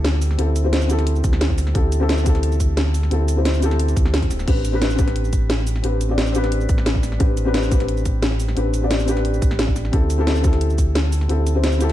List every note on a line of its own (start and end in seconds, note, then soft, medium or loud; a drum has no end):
0.00 0.37 D2 loud
0.00 0.38 C4 medium
0.00 0.38 E4 medium
0.00 0.39 G4 medium
0.00 0.40 A4 loud
0.05 snare loud
0.05 closed hi-hat medium
0.22 open hi-hat medium
0.22 cabasa medium
0.31 snare soft
0.38 1.23 D2 loud
0.38 0.62 C4 medium
0.38 0.62 E4 medium
0.38 0.63 G4 medium
0.38 0.63 A4 medium
0.38 closed hi-hat medium
0.56 closed hi-hat medium
0.56 cabasa medium
0.63 0.86 C4 medium
0.63 0.88 E4 medium
0.63 0.88 G4 medium
0.63 0.89 C5 medium
0.73 snare loud
0.73 closed hi-hat medium
0.82 cabasa soft
0.87 1.72 C4 loud
0.87 1.73 E4 medium
0.87 1.73 G4 medium
0.87 closed hi-hat medium
0.87 cabasa medium
0.93 1.74 A4 loud
0.99 snare soft
0.99 closed hi-hat soft
1.07 closed hi-hat medium
1.16 cabasa soft
1.24 1.74 D2 loud
1.24 kick loud
1.24 closed hi-hat medium
1.24 cabasa medium
1.33 snare medium
1.41 snare loud
1.41 closed hi-hat medium
1.50 kick medium
1.58 snare soft
1.58 open hi-hat medium
1.58 cabasa medium
1.67 snare soft
1.74 3.10 D2 loud
1.74 1.98 C4 medium
1.74 1.99 E4 medium
1.74 1.99 G4 medium
1.74 2.00 A4 loud
1.74 kick loud
1.74 closed hi-hat loud
1.92 closed hi-hat medium
1.92 cabasa medium
2.00 2.22 C4 loud
2.00 2.24 E4 medium
2.00 2.24 G4 medium
2.00 2.25 A4 loud
2.09 snare loud
2.09 closed hi-hat loud
2.18 cabasa soft
2.24 3.08 C4 loud
2.24 3.09 E4 medium
2.24 3.10 G4 medium
2.24 kick loud
2.24 closed hi-hat medium
2.24 cabasa medium
2.29 3.11 A4 loud
2.35 snare soft
2.35 closed hi-hat soft
2.43 closed hi-hat loud
2.52 cabasa soft
2.60 kick medium
2.60 closed hi-hat medium
2.60 cabasa medium
2.77 snare loud
2.77 closed hi-hat loud
2.94 open hi-hat medium
2.94 cabasa medium
3.03 snare soft
3.10 3.95 D2 loud
3.10 3.34 C4 medium
3.10 3.35 E4 medium
3.10 3.36 G4 medium
3.10 3.36 A4 medium
3.10 closed hi-hat loud
3.28 closed hi-hat medium
3.28 cabasa medium
3.36 3.58 C4 medium
3.36 3.60 E4 medium
3.36 3.61 G4 medium
3.36 3.61 C5 medium
3.45 snare loud
3.45 closed hi-hat loud
3.54 cabasa soft
3.60 4.44 C4 loud
3.60 4.45 E4 medium
3.60 4.46 G4 medium
3.60 closed hi-hat medium
3.60 cabasa medium
3.65 4.47 A4 loud
3.71 snare soft
3.71 closed hi-hat soft
3.79 closed hi-hat loud
3.88 closed hi-hat soft
3.88 cabasa soft
3.96 4.30 D2 loud
3.96 kick loud
3.96 closed hi-hat medium
3.96 cabasa medium
4.05 snare medium
4.14 snare loud
4.14 closed hi-hat loud
4.22 kick medium
4.22 closed hi-hat soft
4.31 4.46 D1 medium
4.31 snare soft
4.31 open hi-hat medium
4.31 cabasa medium
4.39 snare soft
4.39 cabasa soft
4.46 5.83 A1 loud
4.46 4.71 C4 medium
4.46 4.71 D4 medium
4.46 4.72 G4 medium
4.46 4.72 B4 loud
4.46 kick loud
4.46 closed hi-hat loud
4.46 crash medium
4.65 closed hi-hat medium
4.65 cabasa medium
4.72 4.94 C4 loud
4.72 4.96 D4 medium
4.72 4.97 G4 medium
4.72 4.98 B4 loud
4.82 snare loud
4.82 closed hi-hat medium
4.90 cabasa soft
4.96 5.81 C4 medium
4.96 5.82 D4 medium
4.96 5.82 G4 medium
4.96 kick loud
4.96 closed hi-hat medium
4.96 cabasa medium
5.01 5.83 B4 loud
5.08 snare soft
5.08 closed hi-hat soft
5.16 closed hi-hat loud
5.24 cabasa soft
5.33 kick medium
5.33 closed hi-hat medium
5.33 cabasa medium
5.50 snare loud
5.50 closed hi-hat loud
5.67 open hi-hat medium
5.67 cabasa medium
5.76 snare soft
5.83 6.68 A1 loud
5.83 6.07 C4 medium
5.83 6.08 D4 medium
5.83 6.08 G4 medium
5.83 6.09 B4 medium
5.83 closed hi-hat medium
6.01 closed hi-hat medium
6.01 cabasa medium
6.09 6.31 C4 medium
6.09 6.32 D4 medium
6.09 6.33 G4 medium
6.09 6.34 D5 medium
6.18 snare loud
6.18 closed hi-hat medium
6.27 cabasa soft
6.32 7.17 C4 loud
6.32 7.18 D4 medium
6.32 7.19 G4 medium
6.32 closed hi-hat medium
6.32 cabasa medium
6.38 7.20 B4 loud
6.44 snare soft
6.44 closed hi-hat soft
6.52 closed hi-hat medium
6.61 cabasa soft
6.69 7.19 A1 loud
6.69 kick loud
6.69 closed hi-hat medium
6.69 cabasa medium
6.78 snare medium
6.86 snare loud
6.86 closed hi-hat loud
6.95 kick medium
7.03 snare soft
7.03 open hi-hat medium
7.03 cabasa medium
7.12 snare soft
7.19 8.55 A1 loud
7.19 7.43 C4 medium
7.19 7.44 D4 medium
7.19 7.44 G4 medium
7.19 7.45 B4 loud
7.19 kick loud
7.19 closed hi-hat medium
7.37 closed hi-hat medium
7.37 cabasa medium
7.45 7.67 C4 medium
7.45 7.69 D4 medium
7.45 7.70 G4 medium
7.45 7.70 B4 loud
7.54 snare loud
7.54 closed hi-hat medium
7.63 cabasa soft
7.69 8.53 C4 medium
7.69 8.54 D4 medium
7.69 8.55 G4 medium
7.69 kick loud
7.69 closed hi-hat medium
7.69 cabasa medium
7.74 8.56 B4 loud
7.80 snare soft
7.80 closed hi-hat soft
7.88 closed hi-hat medium
7.97 cabasa soft
8.05 kick medium
8.05 closed hi-hat medium
8.05 cabasa medium
8.23 snare loud
8.23 closed hi-hat medium
8.40 open hi-hat medium
8.40 cabasa medium
8.48 snare soft
8.56 9.41 A1 loud
8.56 8.80 C4 medium
8.56 8.80 D4 medium
8.56 8.81 G4 medium
8.56 8.81 B4 medium
8.56 closed hi-hat medium
8.74 closed hi-hat medium
8.74 cabasa medium
8.82 9.04 C4 medium
8.82 9.06 D4 medium
8.82 9.06 G4 medium
8.82 9.07 D5 medium
8.91 snare loud
8.91 closed hi-hat medium
9.00 cabasa soft
9.05 9.90 C4 medium
9.05 9.91 D4 medium
9.05 9.92 G4 medium
9.05 closed hi-hat medium
9.05 cabasa medium
9.11 9.93 B4 loud
9.17 snare soft
9.17 closed hi-hat soft
9.25 closed hi-hat medium
9.34 cabasa soft
9.42 9.92 A1 loud
9.42 kick loud
9.42 closed hi-hat medium
9.42 cabasa medium
9.51 snare medium
9.59 snare loud
9.59 closed hi-hat medium
9.68 kick medium
9.76 snare soft
9.76 open hi-hat medium
9.76 cabasa medium
9.85 snare soft
9.92 11.28 D2 loud
9.92 10.16 C4 medium
9.92 10.17 E4 medium
9.92 10.17 G4 medium
9.92 10.18 A4 loud
9.92 kick loud
9.92 closed hi-hat medium
10.10 closed hi-hat medium
10.10 cabasa medium
10.18 10.40 C4 loud
10.18 10.42 E4 medium
10.18 10.43 G4 medium
10.18 10.43 A4 loud
10.27 snare loud
10.27 closed hi-hat medium
10.36 cabasa soft
10.42 11.26 C4 medium
10.42 11.27 E4 medium
10.42 11.28 G4 medium
10.42 kick loud
10.42 closed hi-hat medium
10.42 cabasa medium
10.47 11.29 A4 loud
10.53 snare soft
10.53 closed hi-hat soft
10.61 closed hi-hat medium
10.70 cabasa soft
10.78 kick medium
10.78 closed hi-hat medium
10.78 cabasa medium
10.95 snare loud
10.95 closed hi-hat medium
11.12 open hi-hat medium
11.12 cabasa medium
11.21 snare soft
11.28 11.93 D2 loud
11.28 11.52 C4 medium
11.28 11.53 E4 medium
11.28 11.54 G4 medium
11.28 11.54 A4 medium
11.28 closed hi-hat medium
11.47 closed hi-hat medium
11.47 cabasa medium
11.54 11.77 C4 medium
11.54 11.78 E4 medium
11.54 11.79 G4 medium
11.54 11.79 C5 medium
11.64 snare loud
11.64 closed hi-hat medium
11.73 cabasa soft
11.78 11.93 C4 loud
11.78 11.93 E4 medium
11.78 11.93 G4 medium
11.78 closed hi-hat medium
11.78 cabasa medium
11.83 11.93 A4 loud
11.89 snare soft
11.89 closed hi-hat soft